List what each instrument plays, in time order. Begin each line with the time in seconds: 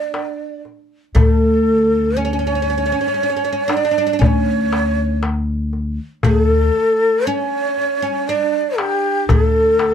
Already playing: oud D4, ney D5
0.14 darbuka tek
0.65 darbuka ka
1.15 upright bass D2, oud A3, ney A4, darbuka dum
2.17 oud C#4, ney C#5
2.25 oud C#4
2.33 oud C#4
2.39 oud C#4
2.47 oud C#4
2.55 oud C#4
2.62 oud C#4
2.68 oud C#4, darbuka ka
2.78 oud C#4
2.86 oud C#4
2.92 oud C#4
3.01 oud C#4
3.08 oud C#4
3.14 oud C#4
3.23 oud C#4
3.30 oud C#4
3.37 oud C#4
3.45 oud C#4
3.53 oud C#4
3.68 oud D4, darbuka tek
3.73 oud D4, ney D5
3.85 oud D4
3.91 oud D4
3.98 oud D4
4.07 oud D4
4.13 oud D4
4.19 upright bass D2, oud C#4, ney D5, darbuka dum
4.26 ney C#5
4.73 darbuka tek
5.23 darbuka tek
5.73 darbuka ka
6.23 upright bass D2, oud A3, ney G#4, darbuka dum
6.46 ney A4
7.27 oud C#4, ney C#5
7.77 darbuka ka
8.02 oud C#4
8.28 oud D4, ney D5
8.78 ney G4, darbuka tek
9.29 upright bass D2, oud A3, ney A4, darbuka dum
9.79 darbuka tek